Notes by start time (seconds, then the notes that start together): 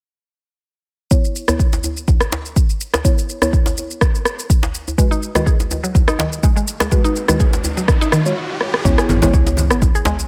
1.11 B3 E4 C#5, kick, shaker
1.25 shaker
1.36 shaker
1.48 B3 E4 C#5, cross-stick, djembe tone, shaker
1.59 kick, shaker
1.73 djembe slap, shaker
1.84 djembe tone, shaker
1.97 shaker
2.08 kick, djembe tone, shaker
2.21 cross-stick, shaker
2.32 djembe slap, shaker
2.45 shaker
2.56 kick, shaker
2.70 shaker
2.81 shaker
2.94 cross-stick, djembe slap, shaker
3.05 B3 E4 C#5, kick, shaker
3.18 shaker
3.29 shaker
3.42 B3 E4 C#5, cross-stick, djembe tone, shaker
3.53 kick, shaker
3.66 djembe slap, shaker
3.77 shaker
3.91 shaker
4.01 kick, cross-stick, shaker
4.15 shaker
4.25 cross-stick, shaker
4.39 shaker
4.50 kick, shaker
4.63 djembe slap, shaker
4.75 shaker
4.88 djembe tone, shaker
4.98 G#3 F#4 B4, kick, riser, shaker
5.11 D#4, shaker
5.23 shaker
5.35 D#3 G#3 F#4 B4, cross-stick, djembe tone, shaker
5.46 G#4, kick, shaker
5.60 djembe slap, shaker
5.71 djembe tone, shaker
5.83 F#3, shaker
5.95 kick, djembe tone, shaker
6.08 D#4, cross-stick, shaker
6.19 D#3, djembe slap, shaker
6.33 shaker
6.43 G#3, kick, shaker
6.56 G#3, shaker
6.68 shaker
6.80 G#3, cross-stick, djembe slap, shaker
6.91 G#3 F#4 B4, kick, shaker
7.04 D#4, shaker
7.16 shaker
7.28 D#3 G#3 F#4 B4, cross-stick, djembe tone, shaker
7.40 G#4, kick, shaker
7.53 djembe slap, shaker
7.64 djembe tone, shaker
7.77 F#3, shaker
7.88 kick, cross-stick, shaker
8.01 D#4, shaker
8.12 D#3, cross-stick, shaker
8.26 G#3 F#4 C#5, shaker
8.61 cross-stick
8.74 cross-stick
8.85 C#2 B3 C#4 E4 C#5, kick, low conga, shaker
8.98 G#4, cross-stick, shaker
9.09 G#1, high conga, low conga, shaker
9.22 G#3 B3 E4 C#5, djembe tone, high conga, shaker
9.34 C#2 C#5, kick, shaker
9.47 djembe slap, shaker
9.57 high conga, shaker
9.71 G#1 B3, cross-stick, shaker
9.82 kick, djembe tone, shaker
9.95 G#4, shaker
10.05 G#3, djembe slap, djembe tone, shaker
10.19 B1, shaker